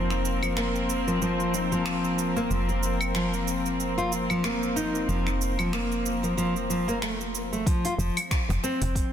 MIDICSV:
0, 0, Header, 1, 6, 480
1, 0, Start_track
1, 0, Tempo, 645161
1, 1864, Time_signature, 4, 2, 24, 8
1, 6790, End_track
2, 0, Start_track
2, 0, Title_t, "String section"
2, 0, Program_c, 0, 48
2, 0, Note_on_c, 0, 53, 83
2, 0, Note_on_c, 0, 58, 76
2, 0, Note_on_c, 0, 60, 89
2, 0, Note_on_c, 0, 70, 91
2, 0, Note_on_c, 0, 72, 78
2, 5692, Note_off_c, 0, 53, 0
2, 5701, Note_on_c, 0, 53, 86
2, 5702, Note_off_c, 0, 58, 0
2, 5702, Note_off_c, 0, 72, 0
2, 5703, Note_off_c, 0, 70, 0
2, 5704, Note_off_c, 0, 60, 0
2, 6114, Note_on_c, 0, 60, 72
2, 6790, Note_off_c, 0, 53, 0
2, 6790, Note_off_c, 0, 60, 0
2, 6790, End_track
3, 0, Start_track
3, 0, Title_t, "Nylon-string guitar"
3, 0, Program_c, 1, 24
3, 319, Note_on_c, 1, 53, 84
3, 414, Note_off_c, 1, 53, 0
3, 424, Note_on_c, 1, 58, 74
3, 785, Note_off_c, 1, 58, 0
3, 798, Note_on_c, 1, 53, 72
3, 893, Note_off_c, 1, 53, 0
3, 905, Note_on_c, 1, 53, 72
3, 1134, Note_off_c, 1, 53, 0
3, 1145, Note_on_c, 1, 63, 61
3, 1266, Note_off_c, 1, 63, 0
3, 1278, Note_on_c, 1, 53, 87
3, 1745, Note_off_c, 1, 53, 0
3, 1758, Note_on_c, 1, 58, 88
3, 1859, Note_off_c, 1, 58, 0
3, 1865, Note_on_c, 1, 53, 67
3, 1992, Note_off_c, 1, 53, 0
3, 1999, Note_on_c, 1, 60, 86
3, 2334, Note_off_c, 1, 60, 0
3, 2345, Note_on_c, 1, 53, 75
3, 2472, Note_off_c, 1, 53, 0
3, 2958, Note_on_c, 1, 65, 88
3, 3059, Note_off_c, 1, 65, 0
3, 3200, Note_on_c, 1, 53, 87
3, 3294, Note_off_c, 1, 53, 0
3, 3304, Note_on_c, 1, 58, 97
3, 3534, Note_off_c, 1, 58, 0
3, 3542, Note_on_c, 1, 63, 93
3, 3772, Note_off_c, 1, 63, 0
3, 3784, Note_on_c, 1, 53, 71
3, 3912, Note_off_c, 1, 53, 0
3, 4157, Note_on_c, 1, 53, 89
3, 4253, Note_off_c, 1, 53, 0
3, 4263, Note_on_c, 1, 58, 75
3, 4624, Note_off_c, 1, 58, 0
3, 4635, Note_on_c, 1, 53, 72
3, 4732, Note_off_c, 1, 53, 0
3, 4742, Note_on_c, 1, 53, 78
3, 4864, Note_off_c, 1, 53, 0
3, 4983, Note_on_c, 1, 53, 65
3, 5105, Note_off_c, 1, 53, 0
3, 5118, Note_on_c, 1, 58, 90
3, 5213, Note_off_c, 1, 58, 0
3, 5223, Note_on_c, 1, 57, 72
3, 5345, Note_off_c, 1, 57, 0
3, 5598, Note_on_c, 1, 57, 65
3, 5699, Note_off_c, 1, 57, 0
3, 5706, Note_on_c, 1, 53, 79
3, 5833, Note_off_c, 1, 53, 0
3, 5841, Note_on_c, 1, 65, 72
3, 5900, Note_off_c, 1, 65, 0
3, 5946, Note_on_c, 1, 53, 73
3, 6073, Note_off_c, 1, 53, 0
3, 6425, Note_on_c, 1, 60, 92
3, 6790, Note_off_c, 1, 60, 0
3, 6790, End_track
4, 0, Start_track
4, 0, Title_t, "FM bass"
4, 0, Program_c, 2, 39
4, 0, Note_on_c, 2, 29, 82
4, 1842, Note_off_c, 2, 29, 0
4, 1864, Note_on_c, 2, 29, 74
4, 3763, Note_off_c, 2, 29, 0
4, 3783, Note_on_c, 2, 29, 78
4, 5683, Note_off_c, 2, 29, 0
4, 5940, Note_on_c, 2, 29, 107
4, 6024, Note_off_c, 2, 29, 0
4, 6316, Note_on_c, 2, 29, 98
4, 6382, Note_off_c, 2, 29, 0
4, 6559, Note_on_c, 2, 29, 81
4, 6693, Note_off_c, 2, 29, 0
4, 6790, End_track
5, 0, Start_track
5, 0, Title_t, "Cajon"
5, 6325, Note_on_c, 9, 38, 80
5, 6400, Note_off_c, 9, 38, 0
5, 6565, Note_on_c, 9, 36, 87
5, 6640, Note_off_c, 9, 36, 0
5, 6790, End_track
6, 0, Start_track
6, 0, Title_t, "Drums"
6, 78, Note_on_c, 9, 26, 28
6, 83, Note_on_c, 9, 82, 19
6, 152, Note_off_c, 9, 26, 0
6, 157, Note_off_c, 9, 82, 0
6, 188, Note_on_c, 9, 82, 68
6, 262, Note_off_c, 9, 82, 0
6, 317, Note_on_c, 9, 75, 69
6, 322, Note_on_c, 9, 82, 32
6, 391, Note_off_c, 9, 75, 0
6, 397, Note_off_c, 9, 82, 0
6, 422, Note_on_c, 9, 26, 88
6, 427, Note_on_c, 9, 82, 36
6, 496, Note_off_c, 9, 26, 0
6, 502, Note_off_c, 9, 82, 0
6, 562, Note_on_c, 9, 82, 20
6, 637, Note_off_c, 9, 82, 0
6, 667, Note_on_c, 9, 82, 71
6, 742, Note_off_c, 9, 82, 0
6, 802, Note_on_c, 9, 82, 30
6, 877, Note_off_c, 9, 82, 0
6, 907, Note_on_c, 9, 82, 39
6, 982, Note_off_c, 9, 82, 0
6, 1042, Note_on_c, 9, 82, 20
6, 1116, Note_off_c, 9, 82, 0
6, 1147, Note_on_c, 9, 82, 80
6, 1222, Note_off_c, 9, 82, 0
6, 1281, Note_on_c, 9, 82, 30
6, 1356, Note_off_c, 9, 82, 0
6, 1381, Note_on_c, 9, 26, 90
6, 1386, Note_on_c, 9, 82, 40
6, 1455, Note_off_c, 9, 26, 0
6, 1461, Note_off_c, 9, 82, 0
6, 1521, Note_on_c, 9, 82, 21
6, 1595, Note_off_c, 9, 82, 0
6, 1627, Note_on_c, 9, 82, 70
6, 1701, Note_off_c, 9, 82, 0
6, 1761, Note_on_c, 9, 82, 29
6, 1835, Note_off_c, 9, 82, 0
6, 1867, Note_on_c, 9, 82, 43
6, 1941, Note_off_c, 9, 82, 0
6, 2002, Note_on_c, 9, 82, 21
6, 2076, Note_off_c, 9, 82, 0
6, 2106, Note_on_c, 9, 82, 72
6, 2181, Note_off_c, 9, 82, 0
6, 2237, Note_on_c, 9, 75, 75
6, 2242, Note_on_c, 9, 82, 35
6, 2311, Note_off_c, 9, 75, 0
6, 2316, Note_off_c, 9, 82, 0
6, 2342, Note_on_c, 9, 26, 85
6, 2347, Note_on_c, 9, 82, 40
6, 2416, Note_off_c, 9, 26, 0
6, 2421, Note_off_c, 9, 82, 0
6, 2482, Note_on_c, 9, 82, 20
6, 2557, Note_off_c, 9, 82, 0
6, 2587, Note_on_c, 9, 82, 73
6, 2662, Note_off_c, 9, 82, 0
6, 2722, Note_on_c, 9, 82, 31
6, 2796, Note_off_c, 9, 82, 0
6, 2828, Note_on_c, 9, 82, 39
6, 2903, Note_off_c, 9, 82, 0
6, 2963, Note_on_c, 9, 82, 21
6, 3038, Note_off_c, 9, 82, 0
6, 3069, Note_on_c, 9, 82, 79
6, 3143, Note_off_c, 9, 82, 0
6, 3199, Note_on_c, 9, 75, 62
6, 3204, Note_on_c, 9, 82, 30
6, 3273, Note_off_c, 9, 75, 0
6, 3278, Note_off_c, 9, 82, 0
6, 3303, Note_on_c, 9, 26, 88
6, 3308, Note_on_c, 9, 82, 39
6, 3378, Note_off_c, 9, 26, 0
6, 3383, Note_off_c, 9, 82, 0
6, 3445, Note_on_c, 9, 82, 22
6, 3519, Note_off_c, 9, 82, 0
6, 3548, Note_on_c, 9, 82, 72
6, 3623, Note_off_c, 9, 82, 0
6, 3684, Note_on_c, 9, 82, 30
6, 3758, Note_off_c, 9, 82, 0
6, 3789, Note_on_c, 9, 82, 41
6, 3863, Note_off_c, 9, 82, 0
6, 3918, Note_on_c, 9, 26, 26
6, 3923, Note_on_c, 9, 82, 20
6, 3993, Note_off_c, 9, 26, 0
6, 3998, Note_off_c, 9, 82, 0
6, 4029, Note_on_c, 9, 82, 74
6, 4103, Note_off_c, 9, 82, 0
6, 4158, Note_on_c, 9, 75, 73
6, 4163, Note_on_c, 9, 82, 32
6, 4233, Note_off_c, 9, 75, 0
6, 4238, Note_off_c, 9, 82, 0
6, 4264, Note_on_c, 9, 26, 84
6, 4269, Note_on_c, 9, 82, 41
6, 4338, Note_off_c, 9, 26, 0
6, 4343, Note_off_c, 9, 82, 0
6, 4403, Note_on_c, 9, 82, 22
6, 4477, Note_off_c, 9, 82, 0
6, 4508, Note_on_c, 9, 82, 73
6, 4582, Note_off_c, 9, 82, 0
6, 4643, Note_on_c, 9, 82, 30
6, 4717, Note_off_c, 9, 82, 0
6, 4748, Note_on_c, 9, 82, 43
6, 4823, Note_off_c, 9, 82, 0
6, 4883, Note_on_c, 9, 82, 22
6, 4957, Note_off_c, 9, 82, 0
6, 4989, Note_on_c, 9, 82, 77
6, 5063, Note_off_c, 9, 82, 0
6, 5124, Note_on_c, 9, 82, 30
6, 5198, Note_off_c, 9, 82, 0
6, 5224, Note_on_c, 9, 26, 81
6, 5229, Note_on_c, 9, 82, 41
6, 5298, Note_off_c, 9, 26, 0
6, 5304, Note_off_c, 9, 82, 0
6, 5363, Note_on_c, 9, 82, 21
6, 5437, Note_off_c, 9, 82, 0
6, 5468, Note_on_c, 9, 82, 69
6, 5542, Note_off_c, 9, 82, 0
6, 5603, Note_on_c, 9, 82, 30
6, 5678, Note_off_c, 9, 82, 0
6, 5702, Note_on_c, 9, 36, 104
6, 5704, Note_on_c, 9, 46, 59
6, 5709, Note_on_c, 9, 82, 45
6, 5777, Note_off_c, 9, 36, 0
6, 5779, Note_off_c, 9, 46, 0
6, 5784, Note_off_c, 9, 82, 0
6, 5838, Note_on_c, 9, 46, 31
6, 5844, Note_on_c, 9, 82, 22
6, 5913, Note_off_c, 9, 46, 0
6, 5918, Note_off_c, 9, 82, 0
6, 5949, Note_on_c, 9, 82, 80
6, 6023, Note_off_c, 9, 82, 0
6, 6079, Note_on_c, 9, 46, 53
6, 6079, Note_on_c, 9, 75, 81
6, 6084, Note_on_c, 9, 82, 36
6, 6153, Note_off_c, 9, 46, 0
6, 6153, Note_off_c, 9, 75, 0
6, 6158, Note_off_c, 9, 82, 0
6, 6182, Note_on_c, 9, 36, 111
6, 6184, Note_on_c, 9, 26, 96
6, 6184, Note_on_c, 9, 46, 57
6, 6189, Note_on_c, 9, 82, 42
6, 6257, Note_off_c, 9, 36, 0
6, 6258, Note_off_c, 9, 26, 0
6, 6258, Note_off_c, 9, 46, 0
6, 6264, Note_off_c, 9, 82, 0
6, 6323, Note_on_c, 9, 82, 22
6, 6398, Note_off_c, 9, 82, 0
6, 6429, Note_on_c, 9, 82, 70
6, 6504, Note_off_c, 9, 82, 0
6, 6559, Note_on_c, 9, 46, 44
6, 6564, Note_on_c, 9, 82, 33
6, 6634, Note_off_c, 9, 46, 0
6, 6639, Note_off_c, 9, 82, 0
6, 6662, Note_on_c, 9, 36, 106
6, 6664, Note_on_c, 9, 46, 58
6, 6669, Note_on_c, 9, 82, 42
6, 6736, Note_off_c, 9, 36, 0
6, 6738, Note_off_c, 9, 46, 0
6, 6744, Note_off_c, 9, 82, 0
6, 6790, End_track
0, 0, End_of_file